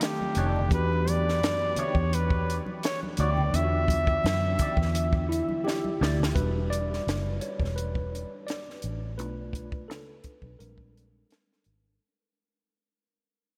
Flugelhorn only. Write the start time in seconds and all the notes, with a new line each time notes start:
0.03 G4
0.73 B4
1.09 D5
1.79 C#5
2.14 B4
2.84 C#5
3.20 D5
3.56 E5